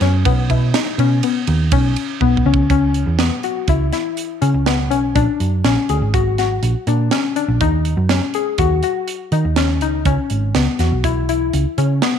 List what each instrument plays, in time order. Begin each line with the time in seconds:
0.01 picked electric bass F#2, synth arpeggio sound C#4, snare, ride
0.25 picked electric bass B1, synth arpeggio sound B3, kick, ride
0.50 picked electric bass B2, synth arpeggio sound E4, kick, ride
0.74 synth arpeggio sound D#4, snare, ride
0.98 picked electric bass B2, synth arpeggio sound C#4, ride
1.23 synth arpeggio sound B3, ride
1.47 picked electric bass D#2, ride
1.72 picked electric bass B1, synth arpeggio sound C#4, kick, ride
1.96 ride
2.21 picked electric bass B1, synth arpeggio sound B3, kick
2.37 kick
2.46 picked electric bass C#2, synth arpeggio sound C#4
2.54 kick
2.70 picked electric bass C#2, synth arpeggio sound C#4, kick, closed hi-hat
2.94 closed hi-hat
3.06 picked electric bass E2
3.19 synth arpeggio sound B3, snare, closed hi-hat
3.43 synth arpeggio sound F#4, closed hi-hat
3.68 picked electric bass C#2, synth arpeggio sound E4, kick, closed hi-hat
3.93 synth arpeggio sound E4, snare, closed hi-hat
4.17 closed hi-hat
4.42 picked electric bass C#3, synth arpeggio sound C#4, closed hi-hat
4.54 picked electric bass C#2
4.66 synth arpeggio sound B3, snare, closed hi-hat
4.90 picked electric bass B1, synth arpeggio sound C#4, closed hi-hat
5.15 picked electric bass A#1, synth arpeggio sound D4, kick, closed hi-hat
5.40 picked electric bass F#2, closed hi-hat
5.64 picked electric bass A#1, synth arpeggio sound C#4, snare, closed hi-hat
5.89 picked electric bass D2, synth arpeggio sound G#4, closed hi-hat
6.01 picked electric bass G#1
6.14 synth arpeggio sound F#4, kick, closed hi-hat
6.38 synth arpeggio sound F#4, snare, closed hi-hat
6.63 picked electric bass A#1, closed hi-hat
6.87 picked electric bass A#2, synth arpeggio sound D4, closed hi-hat
7.11 synth arpeggio sound C#4, snare, closed hi-hat
7.36 synth arpeggio sound D4, closed hi-hat
7.48 picked electric bass A#1
7.60 picked electric bass D#2, synth arpeggio sound D#4, kick, closed hi-hat
7.85 closed hi-hat
7.97 picked electric bass F#2
8.09 synth arpeggio sound C#4, snare, closed hi-hat
8.34 synth arpeggio sound G#4, closed hi-hat
8.58 picked electric bass D#2, synth arpeggio sound F#4, kick, closed hi-hat
8.83 synth arpeggio sound F#4, closed hi-hat
9.08 closed hi-hat
9.32 picked electric bass D#3, synth arpeggio sound D#4, closed hi-hat
9.45 picked electric bass D#2
9.56 synth arpeggio sound C#4, snare, closed hi-hat
9.81 picked electric bass C#2, synth arpeggio sound D#4, closed hi-hat
10.05 picked electric bass C#2, synth arpeggio sound C#4, kick, closed hi-hat
10.30 picked electric bass G#1, closed hi-hat
10.55 picked electric bass C#2, synth arpeggio sound B3, snare, closed hi-hat
10.79 picked electric bass E2, synth arpeggio sound F#4, snare, closed hi-hat
10.92 picked electric bass B1
11.04 synth arpeggio sound E4, kick, closed hi-hat
11.29 synth arpeggio sound E4, closed hi-hat
11.53 picked electric bass C#2, closed hi-hat
11.78 picked electric bass C#3, synth arpeggio sound C#4, closed hi-hat
12.02 synth arpeggio sound B3, snare, closed hi-hat